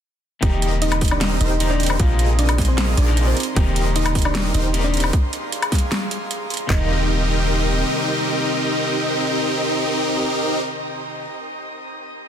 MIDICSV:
0, 0, Header, 1, 7, 480
1, 0, Start_track
1, 0, Key_signature, -3, "major"
1, 0, Tempo, 392157
1, 523, Time_signature, 4, 2, 24, 8
1, 15032, End_track
2, 0, Start_track
2, 0, Title_t, "Synth pluck"
2, 0, Program_c, 0, 84
2, 519, Note_on_c, 0, 79, 103
2, 520, Note_on_c, 0, 67, 79
2, 823, Note_off_c, 0, 67, 0
2, 823, Note_off_c, 0, 79, 0
2, 1003, Note_on_c, 0, 63, 79
2, 1003, Note_on_c, 0, 75, 97
2, 1228, Note_off_c, 0, 75, 0
2, 1229, Note_off_c, 0, 63, 0
2, 1367, Note_on_c, 0, 62, 76
2, 1368, Note_on_c, 0, 74, 95
2, 1591, Note_off_c, 0, 62, 0
2, 1592, Note_off_c, 0, 74, 0
2, 1722, Note_on_c, 0, 75, 101
2, 1724, Note_on_c, 0, 63, 79
2, 1948, Note_off_c, 0, 75, 0
2, 1949, Note_off_c, 0, 63, 0
2, 2083, Note_on_c, 0, 74, 96
2, 2086, Note_on_c, 0, 62, 80
2, 2309, Note_off_c, 0, 74, 0
2, 2311, Note_off_c, 0, 62, 0
2, 2442, Note_on_c, 0, 77, 106
2, 2443, Note_on_c, 0, 65, 81
2, 2744, Note_off_c, 0, 77, 0
2, 2745, Note_off_c, 0, 65, 0
2, 2923, Note_on_c, 0, 62, 82
2, 2924, Note_on_c, 0, 74, 100
2, 3148, Note_off_c, 0, 62, 0
2, 3149, Note_off_c, 0, 74, 0
2, 3281, Note_on_c, 0, 72, 99
2, 3284, Note_on_c, 0, 60, 79
2, 3508, Note_off_c, 0, 72, 0
2, 3510, Note_off_c, 0, 60, 0
2, 3641, Note_on_c, 0, 62, 83
2, 3641, Note_on_c, 0, 74, 97
2, 3868, Note_off_c, 0, 62, 0
2, 3868, Note_off_c, 0, 74, 0
2, 4004, Note_on_c, 0, 60, 78
2, 4006, Note_on_c, 0, 72, 97
2, 4230, Note_off_c, 0, 60, 0
2, 4231, Note_off_c, 0, 72, 0
2, 4365, Note_on_c, 0, 79, 100
2, 4366, Note_on_c, 0, 67, 77
2, 4666, Note_off_c, 0, 67, 0
2, 4666, Note_off_c, 0, 79, 0
2, 4844, Note_on_c, 0, 75, 97
2, 4846, Note_on_c, 0, 63, 78
2, 5069, Note_off_c, 0, 75, 0
2, 5070, Note_off_c, 0, 63, 0
2, 5206, Note_on_c, 0, 62, 76
2, 5206, Note_on_c, 0, 74, 97
2, 5431, Note_off_c, 0, 62, 0
2, 5431, Note_off_c, 0, 74, 0
2, 5563, Note_on_c, 0, 63, 79
2, 5565, Note_on_c, 0, 75, 96
2, 5789, Note_off_c, 0, 63, 0
2, 5790, Note_off_c, 0, 75, 0
2, 5925, Note_on_c, 0, 74, 99
2, 5926, Note_on_c, 0, 62, 79
2, 6150, Note_off_c, 0, 62, 0
2, 6150, Note_off_c, 0, 74, 0
2, 8202, Note_on_c, 0, 75, 95
2, 13826, Note_off_c, 0, 75, 0
2, 15032, End_track
3, 0, Start_track
3, 0, Title_t, "Analog synth pad"
3, 0, Program_c, 1, 89
3, 522, Note_on_c, 1, 67, 81
3, 522, Note_on_c, 1, 75, 77
3, 522, Note_on_c, 1, 82, 77
3, 524, Note_on_c, 1, 84, 93
3, 2423, Note_off_c, 1, 67, 0
3, 2423, Note_off_c, 1, 75, 0
3, 2442, Note_on_c, 1, 63, 80
3, 2442, Note_on_c, 1, 68, 83
3, 4106, Note_off_c, 1, 68, 0
3, 4126, Note_on_c, 1, 67, 84
3, 6244, Note_off_c, 1, 63, 0
3, 6263, Note_off_c, 1, 67, 0
3, 6284, Note_on_c, 1, 68, 84
3, 6284, Note_on_c, 1, 77, 77
3, 8153, Note_off_c, 1, 82, 0
3, 8154, Note_off_c, 1, 84, 0
3, 8184, Note_off_c, 1, 68, 0
3, 8184, Note_off_c, 1, 77, 0
3, 8207, Note_on_c, 1, 72, 75
3, 8208, Note_on_c, 1, 70, 76
3, 8208, Note_on_c, 1, 79, 97
3, 8210, Note_on_c, 1, 63, 85
3, 12975, Note_off_c, 1, 70, 0
3, 12975, Note_off_c, 1, 72, 0
3, 12975, Note_off_c, 1, 79, 0
3, 12976, Note_off_c, 1, 63, 0
3, 15032, End_track
4, 0, Start_track
4, 0, Title_t, "Supersaw synth"
4, 0, Program_c, 2, 81
4, 522, Note_on_c, 2, 60, 78
4, 522, Note_on_c, 2, 63, 74
4, 522, Note_on_c, 2, 67, 71
4, 522, Note_on_c, 2, 75, 88
4, 523, Note_on_c, 2, 70, 72
4, 1694, Note_off_c, 2, 60, 0
4, 1694, Note_off_c, 2, 63, 0
4, 1694, Note_off_c, 2, 67, 0
4, 1694, Note_off_c, 2, 70, 0
4, 1694, Note_off_c, 2, 75, 0
4, 1724, Note_on_c, 2, 60, 96
4, 1724, Note_on_c, 2, 67, 88
4, 1725, Note_on_c, 2, 63, 83
4, 1725, Note_on_c, 2, 70, 89
4, 1725, Note_on_c, 2, 72, 107
4, 2415, Note_off_c, 2, 60, 0
4, 2415, Note_off_c, 2, 63, 0
4, 2415, Note_off_c, 2, 67, 0
4, 2415, Note_off_c, 2, 72, 0
4, 2416, Note_off_c, 2, 70, 0
4, 2445, Note_on_c, 2, 60, 80
4, 2445, Note_on_c, 2, 70, 71
4, 2446, Note_on_c, 2, 65, 70
4, 2446, Note_on_c, 2, 68, 73
4, 2446, Note_on_c, 2, 75, 89
4, 3616, Note_off_c, 2, 60, 0
4, 3616, Note_off_c, 2, 65, 0
4, 3616, Note_off_c, 2, 68, 0
4, 3616, Note_off_c, 2, 70, 0
4, 3616, Note_off_c, 2, 75, 0
4, 3643, Note_on_c, 2, 60, 92
4, 3643, Note_on_c, 2, 68, 89
4, 3644, Note_on_c, 2, 65, 85
4, 3644, Note_on_c, 2, 70, 87
4, 3644, Note_on_c, 2, 74, 103
4, 4109, Note_off_c, 2, 60, 0
4, 4109, Note_off_c, 2, 65, 0
4, 4109, Note_off_c, 2, 68, 0
4, 4109, Note_off_c, 2, 70, 0
4, 4109, Note_off_c, 2, 74, 0
4, 4361, Note_on_c, 2, 60, 81
4, 4361, Note_on_c, 2, 63, 69
4, 4361, Note_on_c, 2, 67, 71
4, 4362, Note_on_c, 2, 70, 76
4, 4362, Note_on_c, 2, 75, 86
4, 5533, Note_off_c, 2, 67, 0
4, 5534, Note_off_c, 2, 60, 0
4, 5534, Note_off_c, 2, 63, 0
4, 5534, Note_off_c, 2, 70, 0
4, 5534, Note_off_c, 2, 75, 0
4, 5561, Note_on_c, 2, 72, 102
4, 5562, Note_on_c, 2, 60, 97
4, 5562, Note_on_c, 2, 63, 90
4, 5562, Note_on_c, 2, 67, 89
4, 5563, Note_on_c, 2, 70, 91
4, 6254, Note_off_c, 2, 60, 0
4, 6254, Note_off_c, 2, 63, 0
4, 6254, Note_off_c, 2, 67, 0
4, 6254, Note_off_c, 2, 70, 0
4, 6254, Note_off_c, 2, 72, 0
4, 8200, Note_on_c, 2, 63, 81
4, 8200, Note_on_c, 2, 75, 100
4, 8201, Note_on_c, 2, 60, 89
4, 8201, Note_on_c, 2, 67, 82
4, 8201, Note_on_c, 2, 70, 82
4, 12972, Note_off_c, 2, 60, 0
4, 12972, Note_off_c, 2, 63, 0
4, 12972, Note_off_c, 2, 67, 0
4, 12972, Note_off_c, 2, 70, 0
4, 12972, Note_off_c, 2, 75, 0
4, 15032, End_track
5, 0, Start_track
5, 0, Title_t, "Clean electric guitar"
5, 0, Program_c, 3, 27
5, 498, Note_on_c, 3, 48, 90
5, 510, Note_on_c, 3, 51, 84
5, 521, Note_on_c, 3, 55, 83
5, 534, Note_on_c, 3, 58, 83
5, 547, Note_on_c, 3, 63, 102
5, 1922, Note_off_c, 3, 48, 0
5, 1928, Note_off_c, 3, 51, 0
5, 1934, Note_off_c, 3, 55, 0
5, 1940, Note_off_c, 3, 58, 0
5, 1947, Note_off_c, 3, 63, 0
5, 1953, Note_on_c, 3, 48, 79
5, 1959, Note_on_c, 3, 51, 71
5, 1965, Note_on_c, 3, 55, 71
5, 1972, Note_on_c, 3, 58, 69
5, 1978, Note_on_c, 3, 63, 86
5, 2404, Note_off_c, 3, 48, 0
5, 2413, Note_off_c, 3, 51, 0
5, 2416, Note_off_c, 3, 55, 0
5, 2419, Note_off_c, 3, 58, 0
5, 2419, Note_on_c, 3, 48, 77
5, 2422, Note_off_c, 3, 63, 0
5, 2433, Note_on_c, 3, 53, 68
5, 2444, Note_on_c, 3, 56, 66
5, 2456, Note_on_c, 3, 58, 69
5, 2468, Note_on_c, 3, 63, 85
5, 3723, Note_off_c, 3, 48, 0
5, 3730, Note_off_c, 3, 53, 0
5, 3736, Note_off_c, 3, 56, 0
5, 3742, Note_off_c, 3, 58, 0
5, 3748, Note_off_c, 3, 63, 0
5, 3753, Note_on_c, 3, 48, 83
5, 3759, Note_on_c, 3, 53, 75
5, 3766, Note_on_c, 3, 56, 76
5, 3772, Note_on_c, 3, 58, 74
5, 3778, Note_on_c, 3, 63, 88
5, 4103, Note_off_c, 3, 48, 0
5, 4106, Note_off_c, 3, 53, 0
5, 4109, Note_off_c, 3, 56, 0
5, 4112, Note_off_c, 3, 58, 0
5, 4115, Note_off_c, 3, 63, 0
5, 4339, Note_on_c, 3, 48, 90
5, 4351, Note_on_c, 3, 51, 86
5, 4364, Note_on_c, 3, 55, 82
5, 4377, Note_on_c, 3, 58, 85
5, 4388, Note_on_c, 3, 63, 96
5, 5763, Note_off_c, 3, 48, 0
5, 5769, Note_off_c, 3, 51, 0
5, 5775, Note_off_c, 3, 55, 0
5, 5782, Note_off_c, 3, 58, 0
5, 5787, Note_off_c, 3, 63, 0
5, 5792, Note_on_c, 3, 48, 77
5, 5798, Note_on_c, 3, 51, 74
5, 5807, Note_on_c, 3, 58, 71
5, 5808, Note_on_c, 3, 55, 73
5, 5817, Note_on_c, 3, 63, 85
5, 6249, Note_off_c, 3, 48, 0
5, 6252, Note_off_c, 3, 51, 0
5, 6256, Note_off_c, 3, 55, 0
5, 6258, Note_off_c, 3, 58, 0
5, 6262, Note_off_c, 3, 63, 0
5, 8165, Note_on_c, 3, 48, 89
5, 8184, Note_on_c, 3, 51, 79
5, 8201, Note_on_c, 3, 55, 76
5, 8220, Note_on_c, 3, 58, 80
5, 8239, Note_on_c, 3, 63, 96
5, 13790, Note_off_c, 3, 48, 0
5, 13808, Note_off_c, 3, 51, 0
5, 13825, Note_off_c, 3, 55, 0
5, 13838, Note_off_c, 3, 58, 0
5, 13848, Note_off_c, 3, 63, 0
5, 15032, End_track
6, 0, Start_track
6, 0, Title_t, "808-style bass"
6, 0, Program_c, 4, 38
6, 521, Note_on_c, 4, 27, 99
6, 1698, Note_off_c, 4, 27, 0
6, 1723, Note_on_c, 4, 27, 91
6, 2419, Note_off_c, 4, 27, 0
6, 2443, Note_on_c, 4, 34, 100
6, 3619, Note_off_c, 4, 34, 0
6, 3643, Note_on_c, 4, 34, 96
6, 4085, Note_off_c, 4, 34, 0
6, 4362, Note_on_c, 4, 27, 102
6, 5539, Note_off_c, 4, 27, 0
6, 5562, Note_on_c, 4, 27, 93
6, 6259, Note_off_c, 4, 27, 0
6, 8202, Note_on_c, 4, 27, 97
6, 9593, Note_off_c, 4, 27, 0
6, 15032, End_track
7, 0, Start_track
7, 0, Title_t, "Drums"
7, 521, Note_on_c, 9, 42, 83
7, 522, Note_on_c, 9, 36, 123
7, 644, Note_off_c, 9, 36, 0
7, 644, Note_off_c, 9, 42, 0
7, 762, Note_on_c, 9, 42, 72
7, 884, Note_off_c, 9, 42, 0
7, 1000, Note_on_c, 9, 42, 80
7, 1123, Note_off_c, 9, 42, 0
7, 1123, Note_on_c, 9, 42, 65
7, 1123, Note_on_c, 9, 76, 76
7, 1240, Note_on_c, 9, 46, 94
7, 1243, Note_on_c, 9, 36, 65
7, 1245, Note_off_c, 9, 42, 0
7, 1245, Note_off_c, 9, 76, 0
7, 1281, Note_on_c, 9, 42, 66
7, 1320, Note_off_c, 9, 42, 0
7, 1320, Note_on_c, 9, 42, 84
7, 1363, Note_off_c, 9, 46, 0
7, 1363, Note_on_c, 9, 76, 59
7, 1366, Note_off_c, 9, 36, 0
7, 1443, Note_off_c, 9, 42, 0
7, 1480, Note_on_c, 9, 38, 115
7, 1480, Note_on_c, 9, 42, 79
7, 1486, Note_off_c, 9, 76, 0
7, 1603, Note_off_c, 9, 38, 0
7, 1603, Note_off_c, 9, 42, 0
7, 1722, Note_on_c, 9, 42, 69
7, 1844, Note_off_c, 9, 42, 0
7, 1962, Note_on_c, 9, 42, 84
7, 2084, Note_off_c, 9, 42, 0
7, 2202, Note_on_c, 9, 42, 49
7, 2243, Note_off_c, 9, 42, 0
7, 2243, Note_on_c, 9, 42, 67
7, 2282, Note_off_c, 9, 42, 0
7, 2282, Note_on_c, 9, 42, 82
7, 2324, Note_on_c, 9, 76, 77
7, 2404, Note_off_c, 9, 42, 0
7, 2442, Note_on_c, 9, 42, 87
7, 2444, Note_on_c, 9, 36, 127
7, 2446, Note_off_c, 9, 76, 0
7, 2565, Note_off_c, 9, 42, 0
7, 2566, Note_off_c, 9, 36, 0
7, 2681, Note_on_c, 9, 42, 69
7, 2804, Note_off_c, 9, 42, 0
7, 2922, Note_on_c, 9, 42, 81
7, 3044, Note_off_c, 9, 42, 0
7, 3045, Note_on_c, 9, 42, 64
7, 3045, Note_on_c, 9, 76, 75
7, 3163, Note_on_c, 9, 38, 37
7, 3163, Note_on_c, 9, 46, 88
7, 3164, Note_on_c, 9, 36, 65
7, 3167, Note_off_c, 9, 42, 0
7, 3167, Note_off_c, 9, 76, 0
7, 3202, Note_on_c, 9, 42, 65
7, 3242, Note_off_c, 9, 42, 0
7, 3242, Note_on_c, 9, 42, 78
7, 3285, Note_off_c, 9, 38, 0
7, 3285, Note_off_c, 9, 46, 0
7, 3286, Note_off_c, 9, 36, 0
7, 3364, Note_off_c, 9, 42, 0
7, 3401, Note_on_c, 9, 38, 122
7, 3401, Note_on_c, 9, 42, 79
7, 3523, Note_off_c, 9, 38, 0
7, 3523, Note_off_c, 9, 42, 0
7, 3641, Note_on_c, 9, 42, 70
7, 3763, Note_off_c, 9, 42, 0
7, 3881, Note_on_c, 9, 42, 79
7, 4003, Note_off_c, 9, 42, 0
7, 4121, Note_on_c, 9, 42, 49
7, 4163, Note_off_c, 9, 42, 0
7, 4163, Note_on_c, 9, 42, 64
7, 4203, Note_off_c, 9, 42, 0
7, 4203, Note_on_c, 9, 42, 77
7, 4325, Note_off_c, 9, 42, 0
7, 4363, Note_on_c, 9, 36, 127
7, 4363, Note_on_c, 9, 42, 79
7, 4485, Note_off_c, 9, 42, 0
7, 4486, Note_off_c, 9, 36, 0
7, 4603, Note_on_c, 9, 42, 66
7, 4725, Note_off_c, 9, 42, 0
7, 4843, Note_on_c, 9, 42, 74
7, 4965, Note_off_c, 9, 42, 0
7, 4965, Note_on_c, 9, 42, 61
7, 4965, Note_on_c, 9, 76, 77
7, 5083, Note_on_c, 9, 36, 64
7, 5083, Note_on_c, 9, 46, 89
7, 5087, Note_off_c, 9, 42, 0
7, 5087, Note_off_c, 9, 76, 0
7, 5124, Note_on_c, 9, 42, 63
7, 5162, Note_off_c, 9, 42, 0
7, 5162, Note_on_c, 9, 42, 78
7, 5204, Note_on_c, 9, 76, 59
7, 5205, Note_off_c, 9, 46, 0
7, 5206, Note_off_c, 9, 36, 0
7, 5284, Note_off_c, 9, 42, 0
7, 5321, Note_on_c, 9, 38, 118
7, 5321, Note_on_c, 9, 42, 73
7, 5327, Note_off_c, 9, 76, 0
7, 5444, Note_off_c, 9, 38, 0
7, 5444, Note_off_c, 9, 42, 0
7, 5562, Note_on_c, 9, 42, 65
7, 5685, Note_off_c, 9, 42, 0
7, 5802, Note_on_c, 9, 42, 79
7, 5925, Note_off_c, 9, 42, 0
7, 6043, Note_on_c, 9, 42, 48
7, 6083, Note_off_c, 9, 42, 0
7, 6083, Note_on_c, 9, 42, 63
7, 6122, Note_off_c, 9, 42, 0
7, 6122, Note_on_c, 9, 42, 74
7, 6164, Note_on_c, 9, 76, 78
7, 6244, Note_off_c, 9, 42, 0
7, 6282, Note_on_c, 9, 42, 79
7, 6283, Note_on_c, 9, 36, 125
7, 6287, Note_off_c, 9, 76, 0
7, 6405, Note_off_c, 9, 36, 0
7, 6405, Note_off_c, 9, 42, 0
7, 6523, Note_on_c, 9, 42, 61
7, 6645, Note_off_c, 9, 42, 0
7, 6762, Note_on_c, 9, 42, 79
7, 6884, Note_off_c, 9, 42, 0
7, 6885, Note_on_c, 9, 42, 59
7, 6885, Note_on_c, 9, 76, 83
7, 7002, Note_on_c, 9, 38, 39
7, 7002, Note_on_c, 9, 46, 91
7, 7003, Note_on_c, 9, 36, 65
7, 7007, Note_off_c, 9, 42, 0
7, 7007, Note_off_c, 9, 76, 0
7, 7042, Note_on_c, 9, 42, 61
7, 7081, Note_off_c, 9, 42, 0
7, 7081, Note_on_c, 9, 42, 77
7, 7124, Note_off_c, 9, 38, 0
7, 7124, Note_off_c, 9, 46, 0
7, 7125, Note_off_c, 9, 36, 0
7, 7203, Note_off_c, 9, 42, 0
7, 7242, Note_on_c, 9, 38, 127
7, 7242, Note_on_c, 9, 42, 77
7, 7364, Note_off_c, 9, 38, 0
7, 7364, Note_off_c, 9, 42, 0
7, 7481, Note_on_c, 9, 42, 66
7, 7603, Note_off_c, 9, 42, 0
7, 7720, Note_on_c, 9, 42, 77
7, 7843, Note_off_c, 9, 42, 0
7, 7961, Note_on_c, 9, 42, 46
7, 8002, Note_off_c, 9, 42, 0
7, 8002, Note_on_c, 9, 42, 60
7, 8042, Note_off_c, 9, 42, 0
7, 8042, Note_on_c, 9, 42, 74
7, 8164, Note_off_c, 9, 42, 0
7, 8202, Note_on_c, 9, 36, 112
7, 8202, Note_on_c, 9, 39, 91
7, 8202, Note_on_c, 9, 43, 108
7, 8325, Note_off_c, 9, 36, 0
7, 8325, Note_off_c, 9, 39, 0
7, 8325, Note_off_c, 9, 43, 0
7, 15032, End_track
0, 0, End_of_file